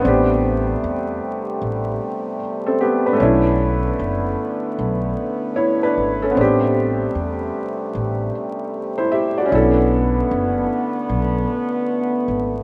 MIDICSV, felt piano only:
0, 0, Header, 1, 2, 480
1, 0, Start_track
1, 0, Tempo, 789474
1, 26, Time_signature, 4, 2, 24, 8
1, 7680, End_track
2, 0, Start_track
2, 0, Title_t, "Felt piano"
2, 0, Program_c, 0, 0
2, 0, Control_c, 0, 64, 127
2, 0, Note_on_c, 0, 59, 72
2, 11, Note_on_c, 0, 60, 67
2, 28, Note_on_c, 0, 62, 69
2, 33, Control_c, 0, 64, 0
2, 49, Note_on_c, 0, 67, 81
2, 127, Control_c, 0, 64, 127
2, 1424, Note_off_c, 0, 59, 0
2, 1434, Note_off_c, 0, 60, 0
2, 1443, Note_off_c, 0, 62, 0
2, 1453, Note_off_c, 0, 67, 0
2, 1619, Note_on_c, 0, 69, 62
2, 1622, Note_on_c, 0, 60, 55
2, 1701, Note_off_c, 0, 69, 0
2, 1703, Note_off_c, 0, 60, 0
2, 1705, Note_on_c, 0, 67, 73
2, 1708, Note_on_c, 0, 59, 68
2, 1850, Note_off_c, 0, 67, 0
2, 1852, Note_off_c, 0, 59, 0
2, 1862, Note_on_c, 0, 71, 66
2, 1868, Note_on_c, 0, 62, 57
2, 1903, Note_on_c, 0, 57, 73
2, 1926, Note_on_c, 0, 61, 67
2, 1934, Note_off_c, 0, 62, 0
2, 1943, Note_on_c, 0, 62, 72
2, 1954, Control_c, 0, 64, 0
2, 1963, Note_on_c, 0, 64, 76
2, 2060, Control_c, 0, 64, 127
2, 2088, Note_off_c, 0, 71, 0
2, 3351, Note_off_c, 0, 61, 0
2, 3360, Note_off_c, 0, 62, 0
2, 3370, Note_off_c, 0, 64, 0
2, 3380, Note_on_c, 0, 73, 71
2, 3382, Note_on_c, 0, 64, 53
2, 3527, Note_off_c, 0, 73, 0
2, 3528, Note_off_c, 0, 64, 0
2, 3545, Note_on_c, 0, 71, 76
2, 3546, Note_on_c, 0, 62, 58
2, 3580, Note_off_c, 0, 57, 0
2, 3770, Note_off_c, 0, 62, 0
2, 3770, Note_off_c, 0, 71, 0
2, 3783, Note_on_c, 0, 69, 64
2, 3788, Note_on_c, 0, 61, 53
2, 3837, Note_on_c, 0, 59, 67
2, 3858, Note_on_c, 0, 60, 66
2, 3873, Control_c, 0, 64, 0
2, 3878, Note_on_c, 0, 62, 64
2, 3896, Note_on_c, 0, 67, 88
2, 3993, Control_c, 0, 64, 127
2, 4009, Note_off_c, 0, 69, 0
2, 4011, Note_off_c, 0, 61, 0
2, 5057, Note_off_c, 0, 67, 0
2, 5459, Note_on_c, 0, 72, 66
2, 5462, Note_on_c, 0, 64, 54
2, 5541, Note_off_c, 0, 72, 0
2, 5543, Note_off_c, 0, 64, 0
2, 5543, Note_on_c, 0, 76, 77
2, 5549, Note_on_c, 0, 67, 59
2, 5689, Note_off_c, 0, 76, 0
2, 5692, Note_off_c, 0, 67, 0
2, 5701, Note_on_c, 0, 74, 66
2, 5704, Note_on_c, 0, 66, 55
2, 5747, Note_off_c, 0, 59, 0
2, 5749, Note_on_c, 0, 61, 68
2, 5757, Note_off_c, 0, 60, 0
2, 5760, Note_off_c, 0, 62, 0
2, 5769, Note_on_c, 0, 62, 68
2, 5786, Note_on_c, 0, 64, 65
2, 5793, Control_c, 0, 64, 0
2, 5807, Note_on_c, 0, 69, 82
2, 5890, Control_c, 0, 64, 127
2, 5927, Note_off_c, 0, 74, 0
2, 5929, Note_off_c, 0, 66, 0
2, 7663, Note_off_c, 0, 61, 0
2, 7673, Note_off_c, 0, 62, 0
2, 7680, Note_off_c, 0, 64, 0
2, 7680, Note_off_c, 0, 69, 0
2, 7680, End_track
0, 0, End_of_file